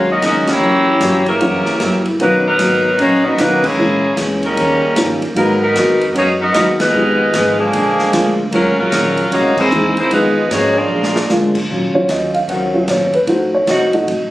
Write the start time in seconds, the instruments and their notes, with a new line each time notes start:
Already playing: upright bass D#2, steel-string acoustic guitar C#4 F#4
0.07 trombone section F#3 A#3 D#4
0.11 saxophone section C#4 F#4 A#4 D#5
0.21 upright bass C#2, steel-string acoustic guitar D#3 G#3 C#4 F#4, trombone section F#3 A#3 D#4, saxophone section C#4, snare, hi-hat pedal, ride
0.25 saxophone section F#4 A#4 D#5
0.46 trombone section E3 A#3 C#4, snare, ride
0.51 saxophone section A#3 E4 G4 C#5
0.61 upright bass F#1, steel-string acoustic guitar F#3 A#3 E4 G4
1.00 upright bass G1, steel-string acoustic guitar F#3 A#3 E4 G4, snare, hi-hat pedal, ride
1.25 trombone section C#3 E3 A#3, saxophone section G3 C#4 E4 A#4, ride
1.40 upright bass F#1, upright piano E3 G3 A#3 C#4 F#4, steel-string acoustic guitar F#3 A#3 E4 G4, ride
1.66 muted upright bass stroke, snare
1.80 upright bass G1, steel-string acoustic guitar F#3 A#3 E4 G4, snare, hi-hat pedal, ride
2.05 ride
2.18 upright bass B1, steel-string acoustic guitar B2 F#3 A#3 D#4, trombone section D#3 F#3 B3, upright piano D#3 A#3 B3 C#4 F#4, saxophone section F#3 A#3 D#4, ride
2.22 saxophone section B4
2.45 trombone section D#3 F#3 B3, saxophone section F#3 D#4 A#4 B4
2.58 upright bass G#1, steel-string acoustic guitar B2 F#3 A#3 D#4, snare, hi-hat pedal, ride
2.98 upright bass A#1, steel-string acoustic guitar B2 F#3 A#3 D#4, saxophone section A#3 D#4 F#4 C#5, trombone section C#4, ride
3.24 trombone section F#3 A#3 D#4, saxophone section B3 F#4 A#4 D#5
3.37 upright bass B1, steel-string acoustic guitar B2 F#3 A#3 D#4, trombone section D#3 F#3 B3, upright piano D#3 A#3 B3 C#4 F#4, saxophone section F#3 A#3 D#4 B4, snare, hi-hat pedal, ride
3.63 trombone section E3 G#3 C#4, saxophone section A#3 E4 G#4 C#5, kick, crash
3.77 upright bass A#1, steel-string acoustic guitar A#2 E3 G#3 C#4, upright piano E3 G#3 A#3 C#4 E4
4.16 upright bass C#2, steel-string acoustic guitar A#2 E3 G#3 C#4, snare, hi-hat pedal, ride
4.41 trombone section C#3 G3 A#3, saxophone section G3 C#4 D#4 A#4, ride
4.56 upright bass D#2, steel-string acoustic guitar D#3 A#3 C#4 G4, ride
4.96 upright bass G2, steel-string acoustic guitar D#3 A#3 C#4 G4, upright piano F3 G3 A#3 C#4 D#4, snare, hi-hat pedal, ride
5.21 muted upright bass stroke, ride
5.35 upright bass G#2, trombone section D#3 F#3 A#3, upright piano F#3 G#3 A#3 B3 D#4, saxophone section F#3 B3 D#4 A#4, steel-string acoustic guitar G#3 B3 F#4, ride
5.39 steel-string acoustic guitar A#4
5.61 trombone section D#3 F#4 A#4, saxophone section B3 D#4 F#4 A#4
5.74 upright bass F2, steel-string acoustic guitar G#3 B3 F#4 A#4, snare, hi-hat pedal, ride
6.01 ride
6.14 upright bass F#2, steel-string acoustic guitar G#3 B3 F#4 A#4, saxophone section A#3 D#4 F#4 C#5, trombone section C#4, ride
6.40 trombone section F#3 B3 D#4, saxophone section B3 F#4 A#4 D#5
6.54 upright bass D#2, trombone section F#3 B3 D#4, upright piano F#3 G#3 A#3 B3 D#4, steel-string acoustic guitar G#3 B3 F#4 A#4, saxophone section B3 F#4 A#4 D#5, snare, hi-hat pedal, ride
6.79 trombone section D#3 G#3 B3, saxophone section G#3 D#4 F4 B4, snare, ride
6.94 upright bass F2, steel-string acoustic guitar F3 B3 D#4, upright piano F3 G#3 B3 D#4 G4
6.98 steel-string acoustic guitar G#4
7.33 upright bass G#1, steel-string acoustic guitar F3 B3 D#4 G#4, snare, hi-hat pedal, ride
7.57 trombone section D3 F3 G#3, saxophone section F3 A#3 D4 G#4
7.73 upright bass A#1, steel-string acoustic guitar A#2 F3 G#3, ride
7.78 steel-string acoustic guitar D4
7.99 snare
8.12 upright bass D2, steel-string acoustic guitar A#2 F3 G#3 D4, upright piano F3 G#3 A#3 D4 F4, snare, hi-hat pedal, ride
8.50 upright bass D#2, trombone section C#3 F#3 A#3, steel-string acoustic guitar D#3 G#3, saxophone section F#3 C#4 F4 A#4, upright piano F#3 G#3 A#3 C#4 F4, ride
8.55 steel-string acoustic guitar C#4 F#4
8.65 upright bass C#2
8.76 upright bass A#1, trombone section C#3 F#3 A#3, saxophone section C#4 F4 A#4
8.80 saxophone section F#3
8.92 upright bass A#1, steel-string acoustic guitar D#3 G#3 C#4 F#4, snare, hi-hat pedal, ride
9.17 ride
9.31 upright bass C2, steel-string acoustic guitar C3 G#3, saxophone section A#3 D#4 F#4 C#5, trombone section C#4, ride
9.36 steel-string acoustic guitar A#3 E4
9.56 trombone section E3 G#3 C4, saxophone section A#3 E4 G#4 C5, kick, crash
9.71 upright bass D#2, steel-string acoustic guitar C3 G#3 A#3 E4, upright piano E3 G#3 A#3 C4 D#4, hi-hat pedal
9.96 trombone section E3 G#3 C4, saxophone section A#3 E4 G#4 C5, ride
10.11 upright bass F2, trombone section D#3 G#3 B3, upright piano F3 G#3 B3 D#4 F4, steel-string acoustic guitar F3 B3 D#4 G#4, saxophone section G#3 D#4 F4 B4, ride
10.49 upright bass G#2, steel-string acoustic guitar F3 B3 D#4 G#4, saxophone section A#3 D#4 F#4 C#5, trombone section C#4, snare, hi-hat pedal, ride
10.76 trombone section F3 G#3 D4, saxophone section A#3 F4 G#4 D5
10.90 upright bass A#2, steel-string acoustic guitar A#2 F3 G#3 D4
11.03 snare
11.16 snare
11.29 steel-string acoustic guitar A#2 F3 G#3 D4, upright bass D3, upright piano F3 G#3 A#3 D4 F4, snare, hi-hat pedal
11.55 kick, crash
11.69 upright bass A#2, steel-string acoustic guitar D#3 F#3 C#4 F4
11.94 upright piano F#3 C#4 F4 C#5, muted upright bass stroke
12.08 upright bass D#2, steel-string acoustic guitar D#3 F#3 C#4 F4, upright piano D#5, snare, hi-hat pedal, ride
12.34 upright piano F5, ride
12.47 upright bass C#2, saxophone section D#3 F3 F#3 C#4, steel-string acoustic guitar D#3 F#3 C#4 F4, upright piano F#5, ride
12.74 upright piano F#3 C#4 F4
12.87 upright bass A#1, steel-string acoustic guitar D#3 F#3 C#4 F4, upright piano C#5, snare, hi-hat pedal, ride
13.00 upright bass F#1
13.13 upright bass D#1, upright piano B4, ride
13.26 upright bass A1, steel-string acoustic guitar F3 A3 D#4 F#4, upright piano A3 D#4 F#4 C5, ride
13.54 upright piano C#5
13.67 upright bass C2, steel-string acoustic guitar F3 A3 D#4 F#4, saxophone section F3 A3 D#4 F#4, upright piano D#5, snare, hi-hat pedal, ride
13.93 upright piano A3 D#4 F#4 D#5, ride
14.07 upright bass A1, steel-string acoustic guitar F3 A3 D#4 F#4, ride